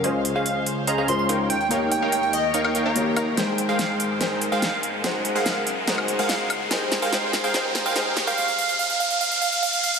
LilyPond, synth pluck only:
\new Staff \with { instrumentName = "Synth pluck" } { \time 4/4 \key ees \mixolydian \tempo 4 = 144 r8. f''16 f''16 r8. bes''16 bes''16 c'''16 c'''16 r8 g''16 g''16 | r8 g''8 g''16 g''16 ees''4. r4 | r8. f''16 f''16 r4. f''16 f''16 r8. | r8. f''16 f''16 r4. f''16 f''16 r8. |
r8. f''16 r8. f''16 r8. f''16 r8. f''16 | f''16 f''16 f''16 f''16 f''16 f''16 f''16 f''16 f''16 f''16 f''16 f''16 f''16 f''16 f''16 f''16 | }